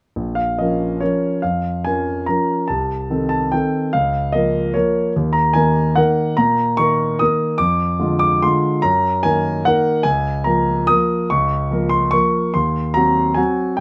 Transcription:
0.16 A#1
0.35 F5
0.58 F3 C#4 A#4 D#5
1.00 F3 C#4 A#4 C#5
1.42 F2 F5
1.85 F3 C#4 A#4 G#5
2.26 F3 C#4 A#4 A#5
2.68 C2 A5
3.10 D#3 C4 A4
3.29 A5
3.52 D#3 C4 A4 G5
3.93 C#2 F5
4.32 F3 A#3 A#4 D#5
4.74 F3 A#3 A#4 C#5
5.16 D#2
5.33 A#5
5.53 D#3 A#3 A#4 G#5
5.96 D#3 A#3 A#4 F#5
6.37 A#2 A#5
6.77 D#3 A#3 A#4 C#6
7.19 D#3 A#3 A#4 D#6
7.58 F2 D6
7.99 D3 G#3 F4
8.19 D6
8.42 D3 G#3 F4 C6
8.82 F#2 A#5
9.23 D#3 A#3 A#4 G#5
9.65 D#3 A#3 A#4 F#5
10.03 C#2 G#5
10.44 F3 A#3 A#4 A#5
10.87 F3 A#3 A#4 D#6
11.30 C#2 C#6
11.71 F3 A#3 A#4
11.89 C6
12.11 F3 A#3 A#4 C#6
12.54 D#2 C6
12.94 F#3 C4 F#4 A#5
13.34 F#3 C4 F#4 G#5
13.77 G5

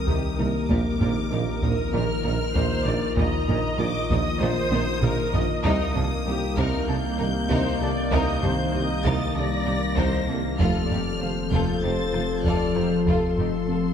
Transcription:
Already playing: C2 D#3 C4 G4 A#4 D#6
0.07 C2 C3 D#4 G4 A#4, taiko
0.38 C2 C3 A#3 D#4 A#4
0.68 A#1 A#2 D#3 A#3 D#4 F4 A#4 D6, taiko
1.00 A#1 A#2 D#4 A#4, taiko low
1.31 A#1 A#2 D#4 F4 A#4
1.62 A#1 A#2 A#3 D#4 A#4 D#6, taiko
1.92 A#1 A#2 D#4 F4 A#4 F6
2.23 A#1 A#2 D#4 F4 A#4
2.54 A#1 A#2 A#3 D#4 A#4 C5, taiko
2.85 A#1 A#2 D#4 A#4 D5
3.16 A#1 A#2 A#3 D#4 A#4 D#5 A#5, taiko
3.47 A#1 A#2 D#4 A#4 D#5, taiko low
3.78 A#1 A#2 D#4 F4 A#4 D6
4.09 A#1 A#2 A#3 D#4 A#4 D#6, taiko
4.40 A#1 A#2 D#4 F4 A#4 C5
4.71 A#1 A#2 D#4 A#4, taiko high
5.01 A#1 A#2 A#3 D#4 A#4, taiko low-mid
5.32 A#1 A#2 D#4 A#4 D#5, taiko low
5.64 C2 C3 D#3 A#3 C4 D#4 G4 A#4 D#5 D#6, taiko
5.95 C2 C3 D#3 A#3 D4 A4, taiko low
6.26 C2 C3 G3 D#4 G4 A#4
6.57 C2 C3 D#4 A#4 F6, taiko
6.87 C2 C3 G3 A#3 D4 A4 G6
7.18 C2 C3 G3 D#4 A#4
7.49 C2 C3 D#4 A#4 C5, taiko
7.80 C2 C3 A#3 D4 A4 D5
8.11 C2 C3 D#4 A#4 D#5 G6, taiko
8.41 C2 C3 D#3 D4 A4 C5, taiko low
8.72 C2 C3 G3 D#4 A#4 D#5
9.04 C2 C3 D#4 A#4 A6, taiko
9.34 C2 C3 G3 D4 A4 D5 A#6
9.65 C2 C3 G3 D#4 A#4
9.96 C2 C3 D#4 A#4 C5, taiko
10.27 C2 C3 A#3 D4 A4
10.58 F1 F2 F3 C4 F4 A4 F6, taiko
10.88 F1 F2 A3 D#4 G4 D5, taiko low
11.20 F1 F2 C4 F4 A4 C5
11.51 F1 F2 F3 A#3 F4 A4 G6, taiko
11.82 F1 F2 C4 D#4 G4 C5 A6
12.13 F1 F2 C4 F4 A4, taiko rim
12.43 F1 F2 F3 F4 A4 D5 F6, taiko
12.75 F1 F2 D#4 F4 G4 C5, taiko rim
13.06 F1 F2 F3 F4 A4 C6, taiko
13.37 F1 F2 A3 D#4 G4, taiko low
13.68 F1 F2 C4 F4 A4

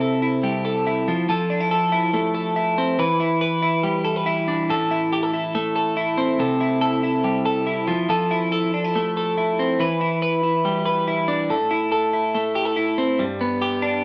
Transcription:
Already playing: C3 C4 E4
0.01 A4
0.22 E4
0.43 G3
0.65 A4
0.87 E4
1.08 F3
1.29 F3 A4
1.50 D4
1.60 E4
1.71 A4
1.92 E4
2.14 A3
2.35 A4
2.56 E4
2.78 C4
2.99 E3 B4
3.20 E4
3.41 B4
3.62 E4
3.83 G3
4.05 A4
4.16 B4
4.26 E4
4.48 D4
4.70 A2 A4
4.91 E4
5.13 G4
5.23 A4
5.34 E4
5.55 A3
5.76 A4
5.97 E4
6.18 C4
6.39 C3 A4
6.61 E4
6.81 A4
7.03 E4
7.24 G3
7.46 A4
7.67 E4
7.88 F3
8.09 F3 A4
8.31 E4
8.52 A4
8.74 D4
8.84 E4
8.96 A3
9.17 A4
9.38 E4
9.59 C4
9.80 E3 B4
10.01 E4
10.22 B4
10.43 E4
10.65 G3
10.86 B4
11.08 E4
11.28 D4
11.50 A2 A4
11.71 E4
11.92 A4
12.13 E4
12.35 A3
12.55 G4
12.65 A4
12.76 E4
12.98 C4
13.19 G2
13.41 B3
13.62 G4
13.82 D4

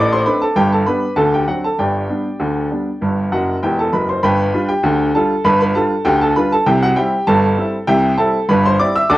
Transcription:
Already playing: A1 A2 D5 D6
0.12 C5 C6
0.26 A3 C4 D4 B4 B5
0.42 A4 A5
0.56 G1 G2 G4 G5
0.72 A4 A5
0.87 G3 B3 D4 B4 B5
1.16 D2 D3 A4 A5
1.34 G4 G5
1.47 F#3 C4 D4 F#4 F#5
1.64 A4 A5
1.78 G1 G2 G4 D5 G5
2.09 G3 B3 D4
2.40 D2 D3
2.71 G3 B3 D4
3.01 G1 G2
3.32 F#1 F#2 F#4 F#5
3.63 E1 E2 G4 G5
3.79 A4 A5
3.93 F#1 F#2 B4 B5
4.09 C5 C6
4.23 G1 G2 B4 G5 B5
4.53 G3 D4 F4
4.68 G4 G5
4.83 D2 D3
5.15 G3 D4 F4 A4 A5
5.44 G1 G2 B4 B5
5.61 B4 B5
5.75 G3 D4 F4 A4 A5
6.05 D2 D3 G4 G5
6.22 A4 A5
6.36 G3 D4 F4 B4 B5
6.52 A4 A5
6.66 C2 C3 G4 G5
6.82 F#4 F#5
6.96 G3 C4 E4 G4 G5
7.27 G1 G2 A4 A5
7.57 G3 C4 E4
7.87 C2 C3 G4 E5 G5
8.18 G3 C4 E4 A4 A5
8.49 G1 G2 B4 B5
8.65 C5 C6
8.79 G3 C4 E4 D5 D6
8.95 E5 E6
9.10 D2 D3 D5 A5 D6

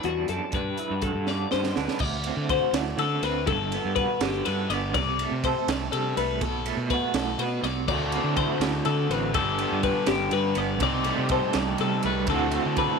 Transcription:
Already playing: E2 E3 D4 A4
0.03 E2 B2 G3 F#4, closed hi-hat
0.28 F#2 D4 A4, closed hi-hat
0.52 G2 B4, kick, closed hi-hat
0.77 E4, closed hi-hat
0.90 G2 F#4
1.02 D3 A4, kick, closed hi-hat
1.15 G2
1.27 D4 D5, snare
1.51 G2 D3 B3 C5, snare
1.64 snare
1.76 D2 D4 B4, snare
1.88 snare
1.99 D2 D5, kick, crash
2.24 C4, ride
2.37 D3
2.49 F#4 C5, kick, ride
2.73 D2 A2 D5, snare, ride
2.97 D3 A4, ride
3.22 D2 C4 B4, ride
3.46 G1 G2 A4, kick, ride
3.72 B3, ride
3.85 G2
3.96 F#4 B4, kick, ride
4.21 G1 D3 G4, snare, ride
4.45 G2 D3 B4, ride
4.70 G1 B3 D5, ride
4.94 C2 C3 D5, kick, ride
5.19 A3, ride
5.31 C3
5.44 A4 C5, kick, ride
5.68 C2 G2 D5, snare, ride
5.92 C3 G3 A4, ride
6.17 C2 A3 B4, ride
6.41 B1 B2 A4, kick, ride
6.66 A3, ride
6.77 B2
6.90 F#4 B4, kick, ride
7.14 B1 A2 A4, snare, ride
7.38 B2 B4, ride
7.63 C2 C3 D5, ride
7.87 D2 D3 A3 C4 F#4 A4 D5, kick, crash
8.12 C4, ride
8.24 D3
8.36 E4 C5, kick, ride
8.50 F#4
8.60 D2 A2 D5, snare, ride
8.85 D3 A4, ride
9.10 A1 C4 B4, ride
9.33 G1 G2 D3 G3 B3 D4 G4 A4, kick, ride
9.58 B3, ride
9.72 G2
9.83 B4, kick, ride
10.06 G1 D3 G4, snare, ride
10.31 G2 D3 B4, ride
10.55 G1 B3 D5, ride
10.80 C2 C3 G3 C4 D#4 G4 D5, kick, ride
11.04 A3, ride
11.18 C3
11.29 A4 C5, kick, ride
11.53 C2 G2 D5, snare, ride
11.78 C3 G3 A4, ride
12.03 C2 A3 B4, ride
12.27 D2 D3 A3 C4 F#4 A4, kick, ride
12.31 C4 E4 F#4
12.51 C4, ride
12.66 D3
12.77 A4 B4, kick, ride

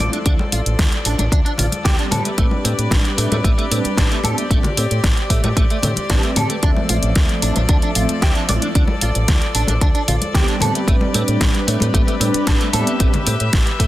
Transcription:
Already playing: F3 A4 D5
0.00 F3 A3 C4 E4, open hi-hat
0.13 D4, closed hi-hat
0.25 D2 F3 A3 C4 D4 E4, kick, closed hi-hat
0.39 high conga
0.52 A1 F4, open hi-hat
0.66 A1, closed hi-hat
0.79 D2, kick, snare, closed hi-hat, high conga
0.92 closed hi-hat
1.05 A1 D4, open hi-hat
1.19 A1 D4, closed hi-hat, high conga
1.32 D2 D4, kick, closed hi-hat
1.45 D4, closed hi-hat
1.58 A1 F4, open hi-hat, low conga
1.72 closed hi-hat, high conga
1.85 D2 G3 B3 C4 G4, kick, snare, closed hi-hat
1.99 D4, closed hi-hat
2.11 A2 G4 A4 B4, open hi-hat, high conga, low conga
2.25 A3, closed hi-hat
2.37 A1 G3 A3 C4 D4 B4, kick, closed hi-hat
2.51 high conga
2.65 A2 C4, open hi-hat
2.78 A2, closed hi-hat
2.90 A1, kick, snare, closed hi-hat, high conga
3.05 closed hi-hat
3.18 A2 A3, open hi-hat
3.31 A2 A3, closed hi-hat, high conga
3.44 A1 A3, kick, closed hi-hat
3.58 A3, closed hi-hat
3.70 A2 G3 C4 D4 B4, open hi-hat
3.84 muted fingered electric bass stroke, closed hi-hat, high conga
3.98 A1 D4, kick, snare, closed hi-hat
4.11 A3, closed hi-hat
4.23 A2 G3 B3 C4 D4 A4, open hi-hat, high conga
4.38 A3, closed hi-hat
4.50 A1 G3 A3 B3 C4 D4, kick, closed hi-hat
4.63 closed hi-hat, high conga, low conga
4.77 A2 C4, open hi-hat
4.91 A2, closed hi-hat
5.04 A1, kick, snare, closed hi-hat, high conga
5.17 closed hi-hat
5.30 A2 A3, kick, open hi-hat
5.43 A2 A3, closed hi-hat, high conga
5.57 A1 A3, kick, closed hi-hat
5.70 A3, closed hi-hat
5.82 A2 C4, open hi-hat, low conga
5.96 muted fingered electric bass stroke, closed hi-hat, high conga
6.09 A1 G3 C4 D4 G4 B4, kick, snare, closed hi-hat
6.23 A3, closed hi-hat
6.36 A2 A4, open hi-hat, high conga, low conga
6.50 A3, closed hi-hat
6.61 D2 F3 A3 C4 D4 A4 E5, kick, closed hi-hat
6.76 high conga
6.89 A1 F4, open hi-hat
7.02 A1, closed hi-hat
7.15 D2, kick, snare, closed hi-hat, high conga
7.29 closed hi-hat
7.42 A1 D4, open hi-hat
7.56 A1 D4, closed hi-hat, high conga
7.69 D2 D4, kick, closed hi-hat
7.82 D4, closed hi-hat
7.95 A1 F3 A3 C4 F4 E5, open hi-hat
8.09 closed hi-hat, high conga
8.22 D2 G4, kick, snare, closed hi-hat
8.35 D4, closed hi-hat
8.48 A1 F3 A3 C4 E4 D5, open hi-hat, high conga
8.62 D4, closed hi-hat
8.75 D2 F3 A3 C4 D4 E4, kick, closed hi-hat
8.88 high conga
9.01 A1 F4, open hi-hat
9.15 A1, closed hi-hat
9.28 D2, kick, snare, closed hi-hat, high conga
9.42 closed hi-hat
9.55 A1 D4, open hi-hat
9.67 A1 D4, closed hi-hat, high conga
9.81 D2 D4, kick, closed hi-hat
9.95 D4, closed hi-hat
10.08 A1 F4, open hi-hat, low conga
10.21 closed hi-hat, high conga
10.34 D2 G3 B3 C4 G4, kick, snare, closed hi-hat
10.48 D4, closed hi-hat
10.60 A2 G4 A4 B4, open hi-hat, high conga, low conga
10.75 A3, closed hi-hat
10.86 A1 G3 A3 C4 D4 B4, kick, closed hi-hat
11.01 high conga
11.14 A2 C4, open hi-hat
11.28 A2, closed hi-hat
11.40 A1, kick, snare, closed hi-hat, high conga
11.55 closed hi-hat
11.67 A2 A3, open hi-hat
11.80 A2 A3, closed hi-hat, high conga
11.94 A1 A3, kick, closed hi-hat
12.07 A3, closed hi-hat
12.20 A2 G3 C4 D4 B4, open hi-hat
12.34 muted fingered electric bass stroke, closed hi-hat, high conga
12.47 A1 D4, kick, snare, closed hi-hat
12.60 A3, closed hi-hat
12.73 A2 G3 B3 C4 D4 A4 E5, open hi-hat, high conga
12.87 A3, closed hi-hat
12.99 A1 G3 A3 B3 C4 D4, kick, closed hi-hat
13.13 closed hi-hat, high conga, low conga
13.27 A2 C4, open hi-hat
13.40 A2, closed hi-hat
13.53 A1, kick, snare, closed hi-hat, high conga
13.67 closed hi-hat
13.79 A2 A3, kick, open hi-hat

